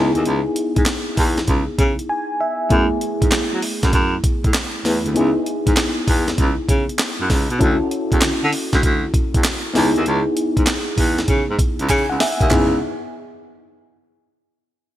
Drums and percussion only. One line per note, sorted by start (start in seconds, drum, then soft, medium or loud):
0.15 closed hi-hat soft
0.26 closed hi-hat medium
0.56 closed hi-hat medium
0.76 kick medium
0.76 closed hi-hat medium
0.86 snare loud
0.86 clap medium
0.86 closed hi-hat medium
1.17 kick loud
1.17 open hi-hat medium
1.38 snare medium
1.38 closed hi-hat soft
1.48 kick medium
1.48 closed hi-hat medium
1.79 kick loud
1.79 closed hi-hat medium
1.99 closed hi-hat soft
2.70 kick loud
2.70 closed hi-hat medium
3.01 closed hi-hat medium
3.22 kick loud
3.22 closed hi-hat medium
3.32 snare loud
3.32 clap medium
3.32 closed hi-hat medium
3.62 open hi-hat medium
3.83 kick medium
3.83 snare medium
3.83 closed hi-hat soft
3.93 kick medium
3.93 closed hi-hat medium
4.24 kick loud
4.24 closed hi-hat medium
4.44 kick loud
4.44 closed hi-hat soft
4.54 snare loud
4.54 clap medium
4.54 closed hi-hat medium
4.85 snare medium
4.85 open hi-hat medium
5.06 closed hi-hat soft
5.16 closed hi-hat medium
5.46 closed hi-hat medium
5.67 kick medium
5.67 closed hi-hat medium
5.76 snare loud
5.76 clap medium
5.76 closed hi-hat medium
6.08 kick loud
6.08 open hi-hat medium
6.28 snare medium
6.28 closed hi-hat soft
6.38 kick medium
6.38 closed hi-hat medium
6.69 kick loud
6.69 closed hi-hat medium
6.89 closed hi-hat soft
6.99 snare loud
6.99 clap medium
6.99 closed hi-hat medium
7.30 kick medium
7.30 snare medium
7.30 open hi-hat medium
7.50 closed hi-hat soft
7.61 kick loud
7.61 closed hi-hat medium
7.91 closed hi-hat medium
8.12 kick medium
8.12 closed hi-hat medium
8.21 snare loud
8.21 clap medium
8.21 closed hi-hat medium
8.53 open hi-hat medium
8.73 kick medium
8.73 snare medium
8.73 closed hi-hat soft
8.83 kick medium
8.83 closed hi-hat medium
9.14 kick loud
9.14 closed hi-hat medium
9.34 kick medium
9.34 closed hi-hat soft
9.44 snare loud
9.44 clap medium
9.44 clap loud
9.44 closed hi-hat medium
9.75 snare medium
9.75 open hi-hat medium
9.96 closed hi-hat soft
10.06 closed hi-hat medium
10.37 closed hi-hat medium
10.57 kick medium
10.57 closed hi-hat medium
10.67 snare loud
10.67 clap medium
10.67 closed hi-hat medium
10.98 kick medium
10.98 open hi-hat medium
11.18 snare medium
11.18 closed hi-hat soft
11.28 kick medium
11.28 closed hi-hat medium
11.59 kick loud
11.59 closed hi-hat medium
11.79 closed hi-hat soft
11.89 kick medium
11.89 clap medium
11.89 closed hi-hat medium
12.20 snare medium
12.20 open hi-hat medium
12.41 kick medium
12.41 closed hi-hat medium
12.50 kick medium
12.50 clap medium
12.50 floor tom medium